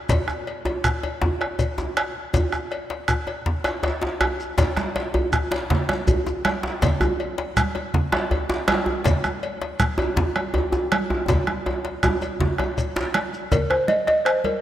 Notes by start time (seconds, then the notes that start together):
0.09 bombo rim, bombo low, cowbell, djembe slap, djembe tone, djembe bass, shekere
0.28 bombo rim, djembe tone, shekere
0.47 cowbell
0.65 cowbell, djembe slap, djembe tone
0.84 bombo rim, djembe slap, djembe bass, shekere
1.03 bombo rim, cowbell, djembe slap, djembe tone
1.22 bombo low, djembe slap, djembe tone
1.41 bombo rim, cowbell
1.59 cowbell, djembe bass, shekere
1.78 djembe slap, djembe tone, shekere
1.97 bombo rim, cowbell
2.15 djembe slap
2.34 bombo low, cowbell, djembe slap, djembe tone, djembe bass, shekere
2.52 bombo rim, djembe tone, shekere
2.71 bombo rim, cowbell, djembe slap
2.90 cowbell, djembe slap
3.08 bombo rim, djembe bass, shekere
3.27 cowbell, djembe slap, djembe tone
3.46 bombo low, djembe slap
3.64 bombo rim, cowbell, djembe slap, shekere
3.83 bombo rim, cowbell, djembe slap, djembe bass
4.02 bombo rim, djembe slap, djembe tone
4.20 bombo rim, cowbell, djembe bass
4.40 shekere
4.58 bombo rim, bombo low, cowbell, djembe slap, djembe bass, low conga, shekere
4.77 bombo rim, djembe slap, djembe tone, high conga, shekere
4.96 cowbell, djembe slap, high conga
5.14 cowbell, djembe slap, djembe bass
5.33 bombo rim, djembe slap, djembe bass, shekere
5.51 bombo rim, cowbell, djembe slap, djembe tone, high conga
5.70 bombo low, djembe slap, low conga
5.89 bombo rim, cowbell, djembe slap, high conga
6.07 cowbell, high conga, djembe bass, shekere
6.27 djembe slap, djembe tone, shekere
6.45 bombo rim, cowbell, djembe slap, high conga
6.63 djembe slap, high conga
6.82 bombo rim, bombo low, cowbell, djembe slap, djembe bass, low conga, shekere
7.01 bombo rim, djembe tone, high conga, djembe bass, shekere
7.20 cowbell, high conga
7.38 cowbell, djembe slap
7.57 bombo rim, djembe slap, high conga, djembe bass, shekere
7.75 bombo rim, cowbell, djembe slap, djembe tone, high conga
7.94 bombo low, djembe slap, low conga
8.12 bombo rim, cowbell, djembe slap, high conga
8.31 cowbell, high conga, djembe tone, djembe bass
8.49 djembe slap, djembe tone, shekere
8.68 bombo rim, cowbell, djembe slap, high conga
8.86 djembe slap, djembe tone, high conga
9.04 bombo rim, bombo low, cowbell, djembe slap, low conga, djembe bass, shekere
9.24 bombo rim, djembe tone, high conga, shekere
9.43 cowbell, high conga
9.62 cowbell, djembe slap
9.80 bombo rim, djembe slap, high conga, djembe bass, shekere
9.98 bombo rim, cowbell, djembe slap, djembe tone, high conga
10.16 bombo low, djembe slap, djembe tone, low conga
10.36 bombo rim, cowbell, high conga
10.54 cowbell, djembe tone, high conga, djembe bass
10.72 djembe slap, djembe tone, shekere
10.92 bombo rim, cowbell, high conga
11.10 djembe slap, high conga, djembe tone
11.28 bombo low, cowbell, djembe slap, djembe tone, djembe bass, low conga, shekere
11.47 bombo rim, djembe tone, high conga
11.66 bombo rim, cowbell, djembe slap, djembe tone
11.85 bombo rim, cowbell, djembe slap
12.03 bombo rim, djembe slap, high conga, djembe tone, djembe bass, shekere
12.22 cowbell, djembe slap, djembe tone, high conga, shekere
12.40 bombo low, djembe slap, djembe tone, low conga
12.58 bombo rim, cowbell, djembe slap, djembe tone, high conga
12.78 cowbell, djembe slap, high conga, djembe bass, shekere
12.96 bombo rim, djembe slap, djembe tone, shekere
13.14 bombo rim, cowbell, high conga
13.33 high conga, shekere
13.52 A#4, bombo low, cowbell, djembe slap, low conga, djembe bass, shekere
13.70 C5, bombo rim, djembe tone
13.88 D#5, bombo rim, cowbell, djembe slap, high conga
14.07 D#5, cowbell, djembe slap
14.25 C5, bombo rim, djembe slap, shekere
14.44 A#4, cowbell, djembe tone, high conga